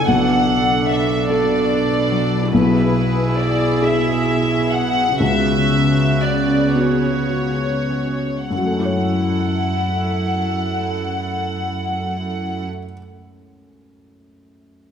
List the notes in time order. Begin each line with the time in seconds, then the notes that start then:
Already playing: F#2 C#3 E4 F#4 A4
0.07 B1 B2 D4 F#5
0.49 F#3
0.89 D4 E5
1.29 D4 F#4 A4 D5
1.70 D4
2.11 F#3
2.51 B1 B2 E4 G#4 B4
2.94 B3
3.37 E4 D5
3.81 E4 G#4 E5
4.26 E4
4.72 B3 F#5
5.20 C#2 C#3 B3 F#4 E5
5.69 G#3
6.21 F#4 D5
6.74 B3 F#4 G#4 C#5
7.30 F#4
7.90 G#3
8.50 F#2 E4 A4 F#5
8.58 F#3
8.64 A3
8.71 C#4
8.79 E4
8.85 C#5